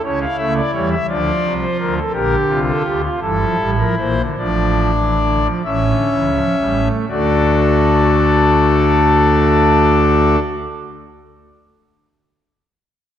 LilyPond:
<<
  \new Staff \with { instrumentName = "Pipe organ" } { \time 6/8 \key d \minor \tempo 4. = 45 << { cis''16 f''16 e''16 d''16 cis''16 e''16 d''8. c''16 bes'16 a'16 | bes'8 f'4 a'8. bes'16 c''8 | d''4. e''4. | <d' a' d''>2.~ |
<d' a' d''>2. | } \\ { e'4. f'4. | g'8. a'16 g'16 f'16 e'4. | d'4. cis'4. | fis'2.~ |
fis'2. | } >> }
  \new Staff \with { instrumentName = "Pipe organ" } { \clef bass \time 6/8 \key d \minor << { cis'8 a8 g8 f4. | d4. e16 f16 g16 f16 e16 d16 | f8. e16 d16 f16 e16 d16 e16 f16 g16 a16 | a2.~ |
a2. | } \\ { <cis, cis>8 <cis, cis>8 <e, e>8 <d, d>8 <c, c>8 <d, d>8 | <bes,, bes,>8 <c, c>8 <d, d>8 <g,, g,>8 <a,, a,>8 <bes,, bes,>8 | <a,, a,>4. <a,, a,>8 <cis, cis>8 <a,, a,>8 | <d, d>2.~ |
<d, d>2. | } >> }
>>